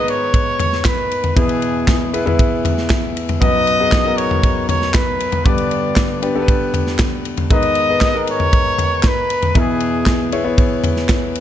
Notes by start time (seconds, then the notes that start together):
Already playing: G#2 D#3 B3 D#4 G#4 B4 D#5
0.08 C#5, ride
0.34 kick, ride
0.60 floor tom, ride
0.73 snare
0.84 B4, kick, snare, clap, ride
1.11 ride
1.24 floor tom, ride
1.36 E2 B2 B3 E4 G#4 B4, kick, ride
1.49 ride
1.62 ride
1.88 kick, snare, clap, ride
2.13 B3 E4 G#4 B4, ride
2.26 B3 E4 G#4 B4, floor tom
2.39 kick, ride
2.65 floor tom, ride
2.78 snare
2.89 kick, snare, clap, ride
3.17 ride
3.29 floor tom, ride
3.41 B1 F#2 B3 D#4 F#4 B4 D#5, kick, ride
3.67 ride
3.80 B3 D#4 F#4 G#4
3.92 kick, snare, clap, ride
4.05 B3 D#4 F#4 A#4
4.17 C#5, ride
4.31 floor tom
4.43 kick, ride
4.69 C#5, floor tom, ride
4.82 snare
4.94 B4, kick, snare, clap, ride
5.20 ride
5.32 floor tom, ride
5.45 G2 D3 B3 D4 G4 B4 D5, kick, ride
5.58 ride
5.71 ride
5.96 kick, snare, clap, ride
6.22 B3 D4 G4 B4, ride
6.35 B3 D4 G4 A4
6.42 B4
6.48 kick, ride
6.74 floor tom, ride
6.87 snare
6.99 kick, snare, clap, ride
7.25 ride
7.37 floor tom, ride
7.50 G#2 D#3 B3 D#4 G#4 B4 D#5, kick, ride
7.62 ride
7.75 ride
7.89 B3 D#4 G#4 B4
8.01 kick, snare, clap, ride
8.14 B3 D#4 G#4 A#4
8.27 ride
8.31 C#5
8.40 floor tom
8.53 kick, ride
8.79 floor tom, ride
9.03 kick, snare, clap, ride
9.08 B4
9.30 ride
9.42 floor tom, ride
9.55 E2 B2 B3 E4 G#4 B4, kick, ride
9.80 ride
10.06 kick, snare, clap, ride
10.32 B3 E4 G#4 C#5, ride
10.44 B3 E4 G#4 C#5
10.58 kick, ride
10.84 floor tom, ride
10.96 snare
11.09 kick, snare, clap, ride
11.35 ride